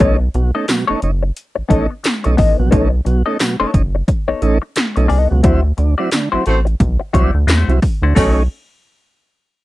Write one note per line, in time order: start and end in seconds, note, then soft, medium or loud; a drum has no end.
0.00 0.29 B1 loud
0.00 0.17 A3 medium
0.00 0.23 B3 medium
0.00 0.17 C#4 medium
0.00 0.20 D#4 medium
0.00 0.17 D#4 loud
0.00 0.20 A4 medium
0.00 0.19 C#5 loud
0.00 kick loud
0.00 closed hi-hat loud
0.20 muted clean electric guitar stroke soft
0.34 0.52 B1 loud
0.34 0.51 B2 medium
0.34 0.51 F#3 medium
0.34 muted clean electric guitar stroke soft
0.34 closed hi-hat medium
0.55 0.66 A3 medium
0.55 0.68 B3 medium
0.55 0.66 C#4 medium
0.55 0.66 D#4 medium
0.55 0.67 D#4 medium
0.55 0.68 A4 medium
0.55 0.68 D#5 medium
0.68 0.85 B2 medium
0.68 0.85 F#3 medium
0.68 muted clean electric guitar stroke medium
0.68 snare medium
0.68 clap medium
0.68 closed hi-hat medium
0.68 tambourine loud
0.87 0.95 F#1 soft
0.87 1.00 A3 medium
0.87 1.00 B3 medium
0.87 1.00 C#4 medium
0.87 1.01 D#4 medium
0.87 1.00 D#4 medium
0.87 1.01 A4 medium
0.87 1.02 C#5 medium
1.01 1.31 F#1 medium
1.01 1.11 C#4 soft
1.01 1.11 D#4 soft
1.01 muted clean electric guitar stroke soft
1.01 closed hi-hat medium
1.23 muted clean electric guitar stroke soft
1.36 closed hi-hat medium
1.55 1.63 A1 soft
1.55 muted clean electric guitar stroke medium
1.69 1.88 A1 medium
1.69 1.86 A3 loud
1.69 1.92 B3 medium
1.69 1.86 C#4 medium
1.69 1.90 D#4 medium
1.69 1.87 D#4 loud
1.69 1.90 A4 medium
1.69 1.90 D#5 medium
1.69 kick medium
1.69 closed hi-hat medium
1.91 muted clean electric guitar stroke medium
2.04 muted clean electric guitar stroke medium
2.04 snare loud
2.04 clap loud
2.04 closed hi-hat medium
2.04 tambourine loud
2.24 2.37 B1 medium
2.24 2.35 A3 medium
2.24 2.36 C#4 medium
2.24 2.36 D#4 medium
2.24 muted clean electric guitar stroke medium
2.24 closed hi-hat medium
2.37 2.56 A1 loud
2.37 2.61 B3 medium
2.37 2.58 D#4 medium
2.37 2.57 A4 medium
2.37 2.58 D#5 medium
2.37 kick medium
2.37 open hi-hat medium
2.58 2.70 A#1 medium
2.58 2.70 B2 medium
2.58 2.70 F#3 medium
2.58 muted clean electric guitar stroke soft
2.71 3.01 B1 loud
2.71 2.88 A3 medium
2.71 2.94 B3 medium
2.71 2.88 C#4 medium
2.71 2.91 D#4 medium
2.71 2.89 D#4 loud
2.71 2.91 A4 medium
2.71 2.90 C#5 medium
2.71 kick loud
2.71 closed hi-hat loud
2.91 muted clean electric guitar stroke soft
3.05 3.23 B1 loud
3.05 3.22 B2 medium
3.05 3.23 F#3 medium
3.05 muted clean electric guitar stroke soft
3.05 closed hi-hat medium
3.26 3.37 A3 medium
3.26 3.38 B3 soft
3.26 3.37 C#4 medium
3.26 3.38 D#4 medium
3.26 3.37 D#4 medium
3.26 3.38 A4 soft
3.26 3.39 D#5 medium
3.39 3.56 B2 medium
3.39 3.56 F#3 medium
3.39 muted clean electric guitar stroke soft
3.39 snare loud
3.39 clap medium
3.39 closed hi-hat medium
3.39 tambourine loud
3.60 3.66 F#1 medium
3.60 3.71 A3 medium
3.60 3.73 B3 medium
3.60 3.71 C#4 medium
3.60 3.71 D#4 medium
3.60 3.73 D#4 medium
3.60 3.74 A4 medium
3.60 3.74 C#5 medium
3.74 4.03 F#1 medium
3.74 3.82 C#4 soft
3.74 3.82 D#4 medium
3.74 kick medium
3.74 closed hi-hat medium
3.95 muted clean electric guitar stroke soft
4.08 muted clean electric guitar stroke soft
4.08 kick medium
4.08 closed hi-hat medium
4.28 4.35 A1 soft
4.28 4.41 B3 medium
4.28 4.41 D#4 medium
4.28 4.42 A4 medium
4.28 4.42 C#5 medium
4.42 4.59 A1 medium
4.42 4.58 A3 medium
4.42 4.58 C#4 medium
4.42 4.58 D#4 loud
4.42 closed hi-hat medium
4.62 muted clean electric guitar stroke medium
4.76 muted clean electric guitar stroke soft
4.76 snare loud
4.76 clap loud
4.76 closed hi-hat loud
4.76 tambourine medium
4.96 5.08 B1 loud
4.96 5.07 A3 medium
4.96 5.07 C#4 medium
4.96 5.07 D#4 medium
4.96 muted clean electric guitar stroke soft
4.96 closed hi-hat soft
5.08 5.28 C2 loud
5.08 5.32 B3 medium
5.08 5.29 D#4 medium
5.08 5.29 A4 medium
5.08 5.29 D#5 medium
5.08 open hi-hat medium
5.29 5.42 C#2 medium
5.29 5.41 B2 medium
5.29 5.41 F#3 medium
5.29 muted clean electric guitar stroke soft
5.43 5.73 D2 loud
5.43 5.60 F#3 loud
5.43 5.67 A3 medium
5.43 5.61 C4 medium
5.43 5.63 E4 medium
5.43 5.61 E4 medium
5.43 5.63 F#4 medium
5.43 5.63 C5 medium
5.43 kick loud
5.43 closed hi-hat loud
5.64 muted clean electric guitar stroke soft
5.77 5.95 D2 medium
5.77 5.95 D3 medium
5.77 muted clean electric guitar stroke soft
5.77 closed hi-hat medium
5.98 6.10 F#3 medium
5.98 6.10 A3 soft
5.98 6.10 C4 medium
5.98 6.11 E4 medium
5.98 6.10 E4 medium
5.98 6.11 F#4 medium
5.98 6.11 D5 medium
6.11 6.29 D3 medium
6.11 muted clean electric guitar stroke soft
6.11 snare loud
6.11 clap medium
6.11 closed hi-hat medium
6.11 tambourine loud
6.32 6.38 A1 soft
6.32 6.44 F#3 medium
6.32 6.45 A3 medium
6.32 6.44 C4 medium
6.32 6.45 E4 medium
6.32 6.44 E4 medium
6.32 6.45 F#4 medium
6.32 6.45 C5 medium
6.46 6.75 A1 medium
6.46 6.59 A3 loud
6.46 6.59 C4 loud
6.46 6.55 C4 soft
6.46 6.55 E4 soft
6.46 6.59 F#4 medium
6.46 6.59 C5 loud
6.46 closed hi-hat medium
6.65 muted clean electric guitar stroke medium
6.65 closed hi-hat soft
6.80 6.97 B1 loud
6.80 kick medium
6.80 closed hi-hat medium
7.00 muted clean electric guitar stroke soft
7.13 7.31 C2 medium
7.13 7.31 F#3 loud
7.13 7.37 A3 medium
7.13 7.31 C4 medium
7.13 7.34 E4 medium
7.13 7.31 E4 medium
7.13 7.34 F#4 medium
7.13 7.34 D5 loud
7.13 kick medium
7.13 closed hi-hat medium
7.34 7.46 D2 medium
7.34 muted clean electric guitar stroke soft
7.47 7.65 E2 medium
7.47 7.71 A3 medium
7.47 7.71 E4 medium
7.47 7.71 F#4 loud
7.47 7.71 C5 loud
7.47 snare loud
7.47 clap medium
7.47 closed hi-hat loud
7.47 tambourine medium
7.68 7.80 C2 loud
7.68 7.79 F#3 medium
7.68 7.80 C4 medium
7.68 7.80 E4 medium
7.68 closed hi-hat soft
7.82 muted clean electric guitar stroke soft
7.82 kick medium
7.82 open hi-hat medium
8.02 8.14 D2 medium
8.02 8.14 D3 medium
8.02 8.14 A3 medium
8.02 8.15 E4 medium
8.02 8.15 F#4 medium
8.02 8.16 C5 medium
8.15 8.48 B1 loud
8.15 8.39 A3 loud
8.15 8.39 A3 medium
8.15 8.43 A3 medium
8.15 8.39 C#4 loud
8.15 8.43 C#4 medium
8.15 8.39 D#4 medium
8.15 8.43 D#4 medium
8.15 8.39 F#4 medium
8.15 8.39 C#5 loud
8.15 8.40 C#5 loud
8.15 kick loud
8.15 crash loud
8.15 tambourine medium